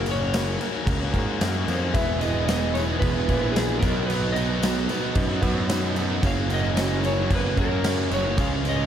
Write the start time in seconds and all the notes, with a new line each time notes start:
Already playing: F#1 F#2 C#3 A#4
0.06 F#3 A#3 C#4 F#4 A#4, tambourine, crash
0.11 C#5
0.20 F#3 A#3 C#4 F#4
0.33 F#2 C#3 F#3 A#3 C#4 F#4 A#4, snare, tambourine, crash
0.61 A#3 C#4 F#4 A#4, tambourine, crash
0.74 F#3 A#3 C#4 F#4
0.86 C#2 A#3 C#4 F#4 A#4, kick, tambourine, crash
1.01 F#3 A#3 C#4 F#4
1.13 G#2 F#3 A#3 C#4 F#4 A#4, kick, tambourine, crash
1.17 F#4
1.27 F#3 A#3 C#4 F#4
1.41 F#2 C#3 F#3 A#3 C#4 F#4 A#4, snare, tambourine, crash
1.68 F2 F#3 A#3 C#4 F#4 A#4, tambourine, crash
1.80 F#3 A#3 C#4 F#4
1.94 E1 E2 B2 E3 G#3 B3 E4 G#4 B4 E5, kick, tambourine, crash
2.08 E3 G#3 B3 G#4
2.21 E3 G#3 B3 E4 G#4 B4 D#5, tambourine, crash
2.33 E3 G#3 B3 E4 G#4
2.46 E2 B2 E3 G#3 B3 E4 G#4 D#5, snare, tambourine, crash
2.50 E4 G#4 B4
2.74 E3 G#3 B3 E4 G#4 B4 C#5, tambourine, crash
2.88 E3 G#3 B3 E4 G#4
2.99 E1 B3 E4 G#4 B4, kick, tambourine, crash
3.14 E3 G#3 B3 E4 G#4
3.27 A#1 E3 G#3 B3 E4 G#4 B4, kick, tambourine, crash
3.41 E3 G#3 B3 E4 G#4
3.52 E2 B2 E3 B3 G#4
3.56 G#3 B3 E4 G#4 B4, snare, tambourine, crash
3.68 G#3 B3 E4
3.79 B1 B2 F#3 B3 D#4 F#4 A#4 B4, kick, tambourine, crash
3.83 B3 D#4 F#4
3.96 F#3 B3 D#4 F#4
4.06 B2 F#3 B3 B4, tambourine, crash
4.11 D#4 F#4
4.23 B3 D#4 F#4
4.32 B2 F#3 B3 D#4 F#4 B4 D#5, tambourine, crash
4.36 B3 D#4 F#4
4.49 F#3 B3 D#4 F#4
4.62 B2 F#3 B3 D#4 F#4 B4, snare, tambourine, crash
4.88 B2 F#3 B3 D#4 F#4 B4, tambourine, crash
5.02 F#3 B3 D#4 F#4
5.15 F#2 B3 D#4 F#4 B4, kick, tambourine, crash
5.28 F#3 B3 D#4 F#4
5.41 F#2 F#3 B3 D#4 F#4 B4, kick, tambourine, crash
5.53 F#3 D#4 F#4
5.57 B3 D#4
5.68 B2 F#3 B3 D#4 F#4 B4, snare, tambourine, crash
5.80 F#3 B3 D#4
5.94 B2 F#3 B3 D#4 F#4 B4, tambourine, crash
6.08 B3 D#4 F#4
6.12 F#3
6.22 F#1 F#2 C#3 F#3 A#3 C#4 F#4 A#4 C#5, kick, tambourine, crash
6.26 F5
6.36 F#3 A#3 C#4 F#4
6.48 C#3 F#3 A#3 C#4 F#4 A#4 C#5, tambourine, crash
6.53 D#5
6.63 F#3 A#3 C#4 F#4
6.77 F#2 C#3 F#3 A#3 C#4 F#4 A#4 C#5, snare, tambourine, crash
7.02 C#3 F#3 A#3 C#4 F#4 A#4 C#5, tambourine, crash
7.06 C#5
7.18 F#3 A#3 C#4 F#4
7.30 F#1 C#4 F#4 A#4 C#5, kick, tambourine, crash
7.35 B4
7.44 F#3 A#3 C#4 F#4
7.56 F#2 F#3 A#3 C#4 F#4 A#4 C#5, kick, tambourine, crash
7.70 F#3 A#3 C#4 F#4
7.84 F#2 C#3 F#3 A#3 C#4 F#4 A#4 C#5, snare, tambourine, crash
7.96 F#3 A#3 C#4
8.10 F#1 C#3 F#3 A#3 C#4 F#4 A#4 C#5, tambourine, crash
8.14 C#4 F#4 C#5
8.24 F#3 A#3 C#4 F#4
8.37 C#2 C#3 F3 G#3 C#4 F4 G#4 C#5 F5, kick, tambourine, crash
8.51 G#3 C#4 F4
8.62 C#3 F3 G#3 C#4 F4 G#4 C#5, tambourine, crash
8.66 F4 D#5
8.78 F3 G#3 C#4 F4